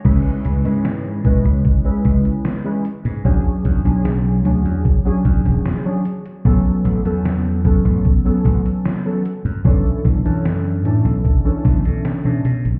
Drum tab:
CC |x---------------|----------------|----------------|----------------|
HH |xxxxxxxxxxxxxxxx|xxxxxxxxxxxxxxxx|xxxxxxxxxxxxxxxx|xxxxxxxxxxxxxxxx|
SD |----o-------o---|----o-------o---|----o-------o---|----o-----o-o---|
BD |o-----o-o-o-----|o-o-----o-o-----|o-----o-o-o-----|o-o-----o-o-----|